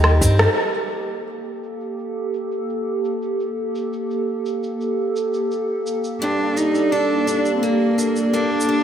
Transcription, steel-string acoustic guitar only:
Already playing: D#3 G3 C4 D#4 G4
0.22 C4
6.22 G2
6.57 D4
6.92 A4
7.27 D4
7.63 A#3
7.98 D4
8.33 A#3
8.69 D4

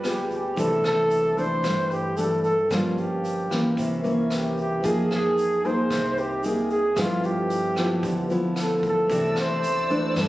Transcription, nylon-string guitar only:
Already playing: G3
0.04 B3 F4 G#4
0.56 C3 E3 A3 D4
1.37 E3 A3 D4
1.64 G2
2.18 E3 A3 D4
2.71 G2 F3 A#3 C#4
3.50 E3 A#3 C#4
3.77 C3
4.04 E3 A#3 C#4
4.84 F3 A#3 D#4 G#4
5.64 A#3 D#4 G#4
5.91 C3
6.45 A#3 D#4 G#4
6.98 G2 F3 B3 E4
7.77 F3 B3 E4
8.03 D3
8.30 F3 B3 E4
9.10 C3 E3 A3 D4
9.90 E3 A3 D4
10.17 G2

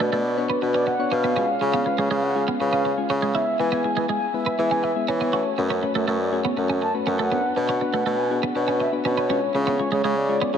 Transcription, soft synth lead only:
Already playing: D5
0.13 D5
0.37 B4
0.75 D5
0.87 F#5
1.12 F5
1.74 F5
2.23 F#5
2.36 F5
2.61 F5
3.35 E5
3.60 G#5
4.09 G#5
4.34 E5
4.71 G#5
4.83 E5
5.08 C#5
5.70 C#5
5.95 C#5
6.20 D5
6.32 C#5
6.82 A5
7.07 F#5
7.69 F#5
8.18 G#5
8.31 F#5
8.80 E5
9.05 C#5
9.67 C#5
9.92 C#5
10.17 D5
10.54 C#5

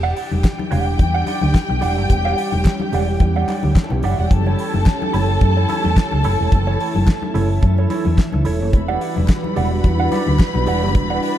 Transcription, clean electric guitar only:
0.03 G4 D5 F#5
0.16 G4 D5 F#5
0.32 muted clean electric guitar stroke
0.43 muted clean electric guitar stroke
0.59 muted clean electric guitar stroke
0.71 G4 D5 F#5
0.87 muted clean electric guitar stroke
0.99 muted clean electric guitar stroke
1.14 G4 D5 F#5
1.27 G4 D5 F#5
1.42 muted clean electric guitar stroke
1.54 muted clean electric guitar stroke
1.70 muted clean electric guitar stroke
1.81 G4 D5 F#5
1.98 G4 D5
2.10 muted clean electric guitar stroke
2.25 G4 D5 F#5
2.38 G4 D5 F#5
2.53 muted clean electric guitar stroke
2.66 muted clean electric guitar stroke
2.81 muted clean electric guitar stroke
2.93 G4 D5 F#5
3.09 muted clean electric guitar stroke
3.21 muted clean electric guitar stroke
3.36 G4 D5 F#5
3.49 G4 D5 F#5
3.65 muted clean electric guitar stroke
3.77 muted clean electric guitar stroke
3.92 muted clean electric guitar stroke
4.04 G4 D5 F#5
4.19 G4 D5 F#5
4.32 muted clean electric guitar stroke
4.47 E4 A4 C#5
4.60 E4 A4 C#5
4.75 muted clean electric guitar stroke
4.87 muted clean electric guitar stroke
5.02 muted clean electric guitar stroke
5.13 E4 A4 C#5
5.30 muted clean electric guitar stroke
5.41 muted clean electric guitar stroke
5.57 E4 A4 C#5
5.69 E4 A4 C#5
5.84 muted clean electric guitar stroke
5.97 muted clean electric guitar stroke
6.12 muted clean electric guitar stroke
6.24 E4 A4 C#5
6.40 E4 A4 C#5
6.52 muted clean electric guitar stroke
6.67 E4 A4 C#5
6.80 E4 A4 C#5
6.95 muted clean electric guitar stroke
7.07 muted clean electric guitar stroke
7.23 muted clean electric guitar stroke
7.34 E4 A4 C#5
7.50 muted clean electric guitar stroke
7.63 muted clean electric guitar stroke
7.79 E4 A4 C#5
7.90 E4 A4 C#5
8.18 muted clean electric guitar stroke
8.33 muted clean electric guitar stroke
8.45 E4 A4 C#5
8.61 E4 A4 C#5
8.73 muted clean electric guitar stroke
8.88 G4 D5 F#5
9.00 G4 D5 F#5
9.16 muted clean electric guitar stroke
9.28 muted clean electric guitar stroke
9.44 muted clean electric guitar stroke
9.56 G4 D5 F#5
9.71 muted clean electric guitar stroke
9.84 muted clean electric guitar stroke
10.00 G4 D5 F#5
10.12 G4 D5 F#5
10.27 muted clean electric guitar stroke
10.39 muted clean electric guitar stroke
10.55 muted clean electric guitar stroke
10.67 G4 D5 F#5
10.82 G4 D5 F#5
10.95 muted clean electric guitar stroke
11.10 G4 D5 F#5
11.22 G4 D5 F#5

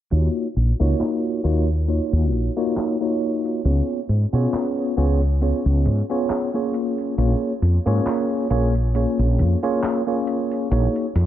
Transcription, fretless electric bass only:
0.12 D#2
0.57 A#1
0.81 C#2
1.45 D#2
2.13 D#2
2.33 A#1
3.65 C#2
4.09 G#2
4.33 B2
4.98 C#2
5.66 C#2
5.86 G#2
7.18 A#1
7.62 F2
7.86 G#2
8.51 A#1
9.19 A#1
9.39 F2
10.71 A#1
11.16 F2

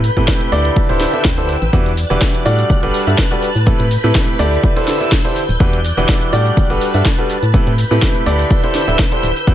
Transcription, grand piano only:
0.17 A2 C4 E4 G4 A4 B4
0.52 D3 D4 E4 G4 A4 D5
0.89 D3 D4 E4 G4 A4 C5
1.13 D3 D4 E4 G4 A4 E5
1.38 D3 D4 E4 G4 A4 C5
1.73 E3 D4 E4 F#4 G4 B4
2.10 E3 D4 E4 F#4 G4 B4
2.46 G3 D4 F#4 G4 A4 D5
2.83 G3 D4 F#4 G4 A4 B4
3.07 G3 D4 F#4 G4 A4 E5
3.31 G3 D4 F#4 G4 A4 B4
3.67 A2 C4 E4 G4 A4 B4
4.04 A2 C4 E4 G4 A4 B4
4.39 D3 D4 E4 G4 A4 D5
4.76 D3 D4 E4 G4 A4 C5
5.01 D3 D4 E4 G4 A4 E5
5.25 D3 D4 E4 G4 A4 C5
5.60 E3 D4 E4 F#4 G4 B4
5.97 E3 D4 E4 F#4 G4 B4
6.33 G3 D4 F#4 G4 A4 D5
6.70 G3 D4 F#4 G4 A4 B4
6.94 G3 D4 F#4 G4 A4 E5
7.18 G3 D4 F#4 G4 A4 B4
7.54 A2 C4 E4 G4 A4 B4
7.91 A2 C4 E4 G4 A4 B4
8.26 D3 D4 E4 G4 A4 D5
8.63 D3 D4 E4 G4 A4 C5
8.88 D3 D4 E4 G4 A4 E5
9.12 D3 D4 E4 G4 A4 C5
9.47 E3 D4 E4 F#4 G4 B4

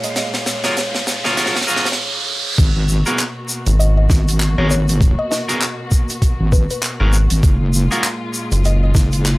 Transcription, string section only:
Already playing: A#2 G#3 F4
2.58 B2 A#3 F#4
7.42 A#2 G#3 F4

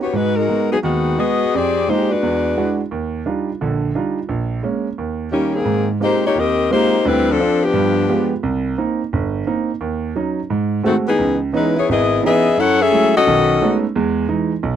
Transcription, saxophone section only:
0.03 B3 F#4 G4 C#5
0.16 G#3 D#4 F#4 B4
0.36 G#3 D#4 F#4 A#4
0.71 F#3 B3 D#4 G#4
0.83 D#3 G#3 B3 F#4
1.18 B3 F#4 G#4 D#5
1.54 C4 G4 G#4 D5
1.90 G#3 D#4 G4 C5
2.11 G#3 D4 F#4 B4
5.32 D#3 A#3 C#4 G4
5.54 D#3 A#3 C4 G#4
6.03 A#3 D#4 G4 C5
6.26 A#3 D#4 G4 C#5
6.38 C4 G4 A#4 D#5
6.72 A#3 D#4 G4 C5
7.06 G3 C4 E4 B4
7.30 F3 C4 D4 A4
7.64 F3 B3 D4 G4
10.86 D#3 A3 C4 F#4
11.07 E3 B3 D#4 G#4
11.55 G#3 D#4 E4 B4
11.77 B3 E4 G#4 C#5
11.91 B3 E4 G#4 D#5
12.26 B3 G#4 D#5 E5
12.59 E4 A4 C#5 F#5
12.81 C#4 G#4 A4 E5
13.16 C#4 F#4 A4 D#5

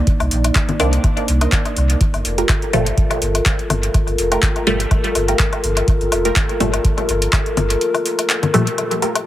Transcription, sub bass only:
0.20 C2
0.31 A#1
0.80 C2
1.28 C2
1.77 C2
2.14 G1
2.25 F1
2.73 G1
3.22 G1
3.70 G1
4.07 G1
4.18 F1
4.67 G1
5.15 G1
5.64 G1
6.01 G1
6.12 F1
6.60 G1
7.09 G1
7.57 G1

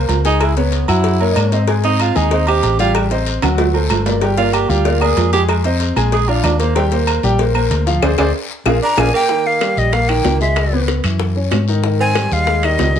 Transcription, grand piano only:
Already playing: A#3 A#4 C5
0.25 G#3 G#4 G#5
0.57 B3 B4 C#5
0.88 F#3 F#4 F#5
1.20 A#3 A#4 C#5
1.52 C4 C5 D#5
1.68 G#3 G#4 G#5
1.84 C4 C5 D#5
2.15 G#3 G#4 G#5
2.32 C4 C5 D#5
2.47 C4 C5 D#5
2.79 G3 G4 G5
3.11 C4 C5 D#5
3.43 F#3 F#4 F#5
3.74 A3 A4 C5
4.06 A#3 A#4 D5
4.22 G3 G4 G5
4.38 A#3 A#4 D5
4.69 G3 G4 G5
4.85 A#3 A#4 D5
5.01 A#3 A#4 D5
5.33 G#3 G#4 G#5
5.65 C4 C5 D#5
5.96 G#3 G#4 G#5
6.28 D4 D5 F5
6.60 A#3 A#4 C5
6.76 G3 G4 G5
6.92 A#3 A#4 C5
7.24 G3 G4 G5
7.39 A#3 A#4 C5
7.55 A#3 A#4 C5
7.86 F3 F4 F5
8.02 G#4 C5 D5
8.18 G#4 C5 D5
8.66 F4 G#4 A#4
8.97 F4 G#4 A#4
9.29 D#3 D#4
9.61 G3 G4
9.93 A#3 A#4
10.09 D#3 D#4
10.41 G#3 G#4
10.73 B3 B4
11.04 E3 E4
11.36 C#4 C#5
11.68 D#3 D#4
11.84 D#3 D#4
12.16 G3 G4
12.48 G#3 G#4
12.64 D#3 D#4
12.96 G#3 G#4

